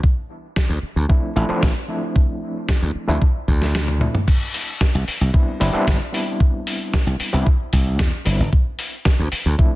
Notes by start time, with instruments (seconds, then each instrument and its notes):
0.04 kick
0.56 kick, snare
0.69 slap bass D2
0.83 muted slap bass stroke
0.96 slap bass D2
1.09 reed electric piano F3 A3 C4 D4 E4, kick
1.35 slap bass A1, reed electric piano F3 A3 C4 D4 E4
1.49 reed electric piano F3 A3 C4 D4 E4, muted slap bass stroke
1.63 slap bass A1, kick, snare
1.88 reed electric piano F3 A3 C4 D4 E4
2.16 kick
2.69 kick, snare
2.82 slap bass D2
2.95 muted slap bass stroke
3.08 slap bass D2, reed electric piano F3 A3 C4 D4 E4
3.22 kick
3.48 slap bass D2, kick
3.62 snare
3.75 snare
3.88 high tom
4.00 reed electric piano F3 A3 C4 D4 E4, mid tom
4.15 mid tom
4.28 kick, crash
4.54 open hi-hat
4.81 kick, snare
4.95 slap bass C2
5.08 muted slap bass stroke, open hi-hat
5.21 slap bass C2
5.33 reed electric piano G3 B3 C4 D4 E4, kick
5.60 slap bass G1, reed electric piano G3 B3 C4 D4 E4, open hi-hat
5.73 reed electric piano G3 B3 C4 D4 E4, muted slap bass stroke
5.87 slap bass G1, kick, snare
6.12 reed electric piano G3 B3 C4 D4 E4, open hi-hat
6.40 kick
6.67 open hi-hat
6.93 kick, snare
7.07 slap bass C2
7.20 open hi-hat
7.33 slap bass C2, reed electric piano G3 B3 C4 D4 E4
7.47 kick
7.73 slap bass C2, kick, open hi-hat
7.99 slap bass E2, kick, snare
8.25 slap bass G1, reed electric piano G3 B3 C4 D4 E4, open hi-hat
8.40 slap bass G1
8.53 kick
8.79 open hi-hat
9.05 kick, snare
9.19 slap bass D2
9.32 muted slap bass stroke, open hi-hat
9.46 slap bass D2
9.58 reed electric piano F3 A3 C4 D4 E4, kick